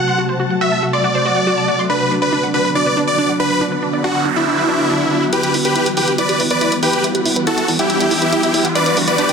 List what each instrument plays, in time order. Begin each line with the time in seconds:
Already playing: supersaw synth F#5
0.08 synth pluck C6
0.18 synth pluck F#4
0.29 synth pluck C5
0.40 synth pluck F#4
0.50 synth pluck F#5
0.61 synth pluck F#4, supersaw synth E5
0.72 synth pluck A5
0.83 synth pluck F#4
0.93 supersaw synth D5, synth pluck C6
1.04 synth pluck F#4
1.15 synth pluck C5
1.25 synth pluck F#4
1.36 synth pluck F#5
1.47 synth pluck F#4
1.58 synth pluck A5
1.68 synth pluck F#4
1.79 synth pluck C6
1.90 synth pluck D4, supersaw synth B4
2.00 synth pluck B4
2.11 synth pluck D4
2.22 supersaw synth B4, synth pluck D5
2.33 synth pluck D4
2.43 synth pluck F#5
2.54 synth pluck D4, supersaw synth B4
2.65 synth pluck B5
2.75 synth pluck D4, supersaw synth D5
2.86 synth pluck B4
2.97 synth pluck D4
3.07 supersaw synth D5, synth pluck D5
3.18 synth pluck D4
3.29 synth pluck F#5
3.40 synth pluck D4, supersaw synth B4
3.50 synth pluck B5
3.61 synth pluck D4, noise sweep
3.72 synth pluck B4
3.83 synth pluck D4
3.93 synth pluck D5
4.04 synth pluck D4, supersaw synth F#4
4.15 synth pluck F#5
4.26 synth pluck D4
4.36 supersaw synth E4, synth pluck B5
4.47 synth pluck D4
4.58 synth pluck B4
4.69 synth pluck D4
4.79 synth pluck D5
4.90 synth pluck D4
5.01 synth pluck F#5
5.11 synth pluck D4
5.22 synth pluck B5
5.33 synth pluck E4, supersaw synth G4 B4, closed hi-hat, riser
5.43 synth pluck G4, closed hi-hat
5.54 analog synth bass E1, synth pluck E4, open hi-hat
5.65 supersaw synth G4 B4, synth pluck B4, closed hi-hat
5.75 synth pluck E4, closed hi-hat
5.86 synth pluck E5, closed hi-hat
5.97 analog synth bass E1, synth pluck E4, supersaw synth G4 B4, open hi-hat
6.08 synth pluck F#5, closed hi-hat
6.18 synth pluck E4, supersaw synth B4 D5, closed hi-hat
6.29 synth pluck G4, closed hi-hat
6.40 analog synth bass E1, synth pluck E4, open hi-hat
6.50 synth pluck B4, supersaw synth B4 D5, closed hi-hat
6.61 synth pluck E4, closed hi-hat
6.72 synth pluck E5, closed hi-hat
6.83 analog synth bass E2, synth pluck E4, supersaw synth G4 B4, open hi-hat
6.93 synth pluck F#5, closed hi-hat
7.04 synth pluck E4, closed hi-hat
7.15 synth pluck G4, closed hi-hat
7.26 analog synth bass E1, synth pluck E4, open hi-hat
7.36 synth pluck B4, closed hi-hat
7.47 synth pluck E4, supersaw synth F#4 A4, closed hi-hat
7.58 synth pluck E5, closed hi-hat
7.68 analog synth bass E1, synth pluck E4, open hi-hat
7.79 supersaw synth E4 G4, synth pluck F#5, closed hi-hat
7.90 synth pluck E4, closed hi-hat
8.01 synth pluck G4, closed hi-hat
8.11 analog synth bass E1, synth pluck E4, open hi-hat
8.22 synth pluck B4, closed hi-hat
8.33 synth pluck E4, closed hi-hat
8.43 synth pluck E5, closed hi-hat
8.54 analog synth bass E2, synth pluck E4, open hi-hat
8.65 synth pluck F#5, closed hi-hat
8.75 synth pluck D4, supersaw synth B4 D5, closed hi-hat
8.86 synth pluck B4, closed hi-hat
8.97 analog synth bass G1, synth pluck D4, open hi-hat
9.07 supersaw synth B4 D5, synth pluck D5, closed hi-hat
9.18 synth pluck D4, closed hi-hat
9.29 synth pluck G5, closed hi-hat